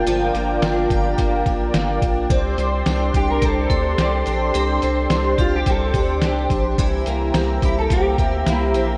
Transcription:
Already playing: twelve-string acoustic guitar A#3 D4 G4, analog synth pad F4 A#4 D5 G5
0.07 analog synth bass G1, twelve-string acoustic guitar F3, closed hi-hat
0.35 analog synth bass G1, twelve-string acoustic guitar A#3, closed hi-hat
0.62 analog synth bass G1, twelve-string acoustic guitar D4, snare, closed hi-hat
0.90 analog synth bass G1, twelve-string acoustic guitar G4, kick, closed hi-hat
1.18 analog synth bass G1, twelve-string acoustic guitar A#3, kick, closed hi-hat
1.46 analog synth bass A1, twelve-string acoustic guitar D4, kick, closed hi-hat
1.74 analog synth bass G1, twelve-string acoustic guitar A#3, snare, closed hi-hat
2.02 analog synth bass A#1, twelve-string acoustic guitar D4, kick, closed hi-hat
2.30 analog synth bass C2, twelve-string acoustic guitar C4, analog synth pad G4 C5 C6, kick, closed hi-hat
2.58 analog synth bass C2, twelve-string acoustic guitar C4, closed hi-hat
2.86 analog synth bass C2, twelve-string acoustic guitar D4, snare, closed hi-hat
3.14 analog synth bass C2, twelve-string acoustic guitar G4, clean electric guitar G4, kick, closed hi-hat
3.31 clean electric guitar A#4
3.42 analog synth bass C2, twelve-string acoustic guitar C4, clean electric guitar A4, vibraphone C5, kick, closed hi-hat
3.70 analog synth bass D2, twelve-string acoustic guitar D4, vibraphone A4, kick, closed hi-hat
3.98 analog synth bass C2, twelve-string acoustic guitar C4, clean electric guitar G4, snare, closed hi-hat
4.26 analog synth bass A#1, twelve-string acoustic guitar D4, closed hi-hat
4.54 analog synth bass C2, twelve-string acoustic guitar C4, closed hi-hat
4.82 analog synth bass C2, twelve-string acoustic guitar C4, closed hi-hat
5.10 analog synth bass C2, twelve-string acoustic guitar D4, snare, closed hi-hat
5.38 analog synth bass C2, clean electric guitar F4, vibraphone G4, twelve-string acoustic guitar G4, kick, closed hi-hat
5.56 clean electric guitar G4
5.66 analog synth bass C2, twelve-string acoustic guitar C4, clean electric guitar A4, kick, closed hi-hat
5.94 analog synth bass D2, twelve-string acoustic guitar D4, kick, closed hi-hat
6.22 analog synth bass C2, twelve-string acoustic guitar C4, clean electric guitar G4, snare, closed hi-hat
6.50 analog synth bass A#1, twelve-string acoustic guitar D4, kick, closed hi-hat
6.77 analog synth bass C2, twelve-string acoustic guitar E3, analog synth pad E5 A#5, kick, closed hi-hat
7.06 analog synth bass C2, twelve-string acoustic guitar A#3, closed hi-hat
7.34 analog synth bass C2, twelve-string acoustic guitar C4, snare, closed hi-hat
7.62 analog synth bass C2, clean electric guitar E4, twelve-string acoustic guitar G4, kick, closed hi-hat
7.79 clean electric guitar A4
7.90 analog synth bass C2, twelve-string acoustic guitar A#3, clean electric guitar G4, kick, closed hi-hat
8.18 analog synth bass D2, twelve-string acoustic guitar C4, kick, closed hi-hat
8.46 analog synth bass C2, twelve-string acoustic guitar A#3, clean electric guitar E4, snare, closed hi-hat
8.74 analog synth bass A#1, twelve-string acoustic guitar C4, closed hi-hat

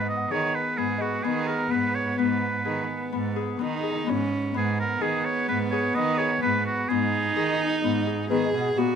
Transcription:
Already playing: cello G#2, harp B3 G#4, viola B3, celesta B4
0.01 celesta D#5
0.09 oboe D#5
0.17 celesta F#5
0.31 cello D#3, harp G#4, oboe C#5
0.55 oboe B4
0.78 cello G#2, harp B3, oboe G#4
0.98 oboe F#4, harp G#4, celesta D#5
1.24 cello D#3, harp B3, oboe G#4
1.47 harp G#4, oboe A#4
1.71 cello G#2, harp B3, oboe B4
1.95 oboe C#5
2.18 cello G#2, harp B3, oboe B4
2.65 cello D#3, harp G#4
3.12 cello G#2, harp B3
3.36 harp G#4
3.59 cello D#3, harp B3, viola D#4
3.83 harp G#4
4.06 cello G#2, harp B3, viola C#4
4.54 cello G#2, harp B3, viola B3, oboe G#4
4.80 oboe A#4
5.01 cello D#3, harp G#4, oboe G#4
5.25 oboe C#5
5.49 cello G#2, harp B3, oboe B4
5.71 harp G#4, oboe C#5
5.95 cello D#3, harp B3, oboe D#5
6.18 harp G#4, oboe C#5
6.42 cello G#2, harp B3, oboe B4
6.66 oboe F#4
6.89 cello G#2, harp B3, viola D#4, oboe G#4
7.36 cello D#3, harp G#4
7.83 cello G#2, harp B3
8.07 harp G#4
8.30 cello D#3, harp B3, viola G#4, celesta B4
8.45 celesta D#5
8.54 cello B2, harp G#4
8.61 celesta F#5
8.77 cello A#2, harp B3, viola F#4

